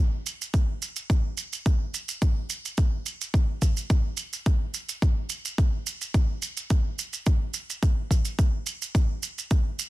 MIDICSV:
0, 0, Header, 1, 2, 480
1, 0, Start_track
1, 0, Tempo, 560748
1, 1899, Time_signature, 4, 2, 24, 8
1, 8467, End_track
2, 0, Start_track
2, 0, Title_t, "Drums"
2, 226, Note_on_c, 9, 82, 76
2, 311, Note_off_c, 9, 82, 0
2, 355, Note_on_c, 9, 82, 49
2, 441, Note_off_c, 9, 82, 0
2, 460, Note_on_c, 9, 36, 111
2, 462, Note_on_c, 9, 82, 41
2, 546, Note_off_c, 9, 36, 0
2, 547, Note_off_c, 9, 82, 0
2, 703, Note_on_c, 9, 82, 71
2, 789, Note_off_c, 9, 82, 0
2, 824, Note_on_c, 9, 82, 49
2, 910, Note_off_c, 9, 82, 0
2, 940, Note_on_c, 9, 36, 113
2, 944, Note_on_c, 9, 82, 42
2, 1026, Note_off_c, 9, 36, 0
2, 1030, Note_off_c, 9, 82, 0
2, 1177, Note_on_c, 9, 82, 70
2, 1262, Note_off_c, 9, 82, 0
2, 1308, Note_on_c, 9, 82, 51
2, 1393, Note_off_c, 9, 82, 0
2, 1420, Note_on_c, 9, 36, 106
2, 1425, Note_on_c, 9, 82, 42
2, 1506, Note_off_c, 9, 36, 0
2, 1510, Note_off_c, 9, 82, 0
2, 1661, Note_on_c, 9, 82, 75
2, 1747, Note_off_c, 9, 82, 0
2, 1785, Note_on_c, 9, 82, 56
2, 1870, Note_off_c, 9, 82, 0
2, 1899, Note_on_c, 9, 36, 110
2, 1901, Note_on_c, 9, 82, 48
2, 1985, Note_off_c, 9, 36, 0
2, 1987, Note_off_c, 9, 82, 0
2, 2138, Note_on_c, 9, 82, 73
2, 2223, Note_off_c, 9, 82, 0
2, 2271, Note_on_c, 9, 82, 51
2, 2357, Note_off_c, 9, 82, 0
2, 2376, Note_on_c, 9, 82, 42
2, 2379, Note_on_c, 9, 36, 109
2, 2461, Note_off_c, 9, 82, 0
2, 2464, Note_off_c, 9, 36, 0
2, 2619, Note_on_c, 9, 82, 64
2, 2705, Note_off_c, 9, 82, 0
2, 2750, Note_on_c, 9, 82, 56
2, 2836, Note_off_c, 9, 82, 0
2, 2858, Note_on_c, 9, 36, 110
2, 2866, Note_on_c, 9, 82, 41
2, 2944, Note_off_c, 9, 36, 0
2, 2952, Note_off_c, 9, 82, 0
2, 3097, Note_on_c, 9, 82, 75
2, 3099, Note_on_c, 9, 36, 54
2, 3182, Note_off_c, 9, 82, 0
2, 3184, Note_off_c, 9, 36, 0
2, 3225, Note_on_c, 9, 82, 46
2, 3310, Note_off_c, 9, 82, 0
2, 3339, Note_on_c, 9, 36, 110
2, 3340, Note_on_c, 9, 82, 39
2, 3425, Note_off_c, 9, 36, 0
2, 3425, Note_off_c, 9, 82, 0
2, 3570, Note_on_c, 9, 82, 76
2, 3655, Note_off_c, 9, 82, 0
2, 3707, Note_on_c, 9, 82, 54
2, 3793, Note_off_c, 9, 82, 0
2, 3819, Note_on_c, 9, 36, 108
2, 3819, Note_on_c, 9, 82, 42
2, 3905, Note_off_c, 9, 36, 0
2, 3905, Note_off_c, 9, 82, 0
2, 4058, Note_on_c, 9, 82, 71
2, 4144, Note_off_c, 9, 82, 0
2, 4185, Note_on_c, 9, 82, 51
2, 4271, Note_off_c, 9, 82, 0
2, 4299, Note_on_c, 9, 36, 105
2, 4303, Note_on_c, 9, 82, 41
2, 4385, Note_off_c, 9, 36, 0
2, 4389, Note_off_c, 9, 82, 0
2, 4532, Note_on_c, 9, 82, 73
2, 4618, Note_off_c, 9, 82, 0
2, 4667, Note_on_c, 9, 82, 57
2, 4753, Note_off_c, 9, 82, 0
2, 4779, Note_on_c, 9, 36, 105
2, 4782, Note_on_c, 9, 82, 40
2, 4865, Note_off_c, 9, 36, 0
2, 4868, Note_off_c, 9, 82, 0
2, 5021, Note_on_c, 9, 82, 77
2, 5106, Note_off_c, 9, 82, 0
2, 5146, Note_on_c, 9, 82, 56
2, 5232, Note_off_c, 9, 82, 0
2, 5259, Note_on_c, 9, 36, 108
2, 5261, Note_on_c, 9, 82, 42
2, 5345, Note_off_c, 9, 36, 0
2, 5346, Note_off_c, 9, 82, 0
2, 5497, Note_on_c, 9, 82, 72
2, 5582, Note_off_c, 9, 82, 0
2, 5625, Note_on_c, 9, 82, 51
2, 5710, Note_off_c, 9, 82, 0
2, 5736, Note_on_c, 9, 82, 44
2, 5739, Note_on_c, 9, 36, 104
2, 5822, Note_off_c, 9, 82, 0
2, 5824, Note_off_c, 9, 36, 0
2, 5981, Note_on_c, 9, 82, 71
2, 6067, Note_off_c, 9, 82, 0
2, 6103, Note_on_c, 9, 82, 51
2, 6189, Note_off_c, 9, 82, 0
2, 6216, Note_on_c, 9, 82, 44
2, 6219, Note_on_c, 9, 36, 102
2, 6302, Note_off_c, 9, 82, 0
2, 6305, Note_off_c, 9, 36, 0
2, 6453, Note_on_c, 9, 82, 78
2, 6538, Note_off_c, 9, 82, 0
2, 6590, Note_on_c, 9, 82, 57
2, 6675, Note_off_c, 9, 82, 0
2, 6699, Note_on_c, 9, 36, 104
2, 6701, Note_on_c, 9, 82, 47
2, 6785, Note_off_c, 9, 36, 0
2, 6787, Note_off_c, 9, 82, 0
2, 6940, Note_on_c, 9, 36, 53
2, 6945, Note_on_c, 9, 82, 83
2, 7025, Note_off_c, 9, 36, 0
2, 7031, Note_off_c, 9, 82, 0
2, 7062, Note_on_c, 9, 82, 53
2, 7148, Note_off_c, 9, 82, 0
2, 7179, Note_on_c, 9, 36, 100
2, 7181, Note_on_c, 9, 82, 48
2, 7265, Note_off_c, 9, 36, 0
2, 7267, Note_off_c, 9, 82, 0
2, 7417, Note_on_c, 9, 82, 74
2, 7502, Note_off_c, 9, 82, 0
2, 7549, Note_on_c, 9, 82, 53
2, 7634, Note_off_c, 9, 82, 0
2, 7660, Note_on_c, 9, 36, 104
2, 7664, Note_on_c, 9, 82, 48
2, 7745, Note_off_c, 9, 36, 0
2, 7749, Note_off_c, 9, 82, 0
2, 7899, Note_on_c, 9, 82, 76
2, 7985, Note_off_c, 9, 82, 0
2, 8031, Note_on_c, 9, 82, 51
2, 8117, Note_off_c, 9, 82, 0
2, 8140, Note_on_c, 9, 36, 100
2, 8140, Note_on_c, 9, 82, 43
2, 8225, Note_off_c, 9, 82, 0
2, 8226, Note_off_c, 9, 36, 0
2, 8381, Note_on_c, 9, 82, 85
2, 8467, Note_off_c, 9, 82, 0
2, 8467, End_track
0, 0, End_of_file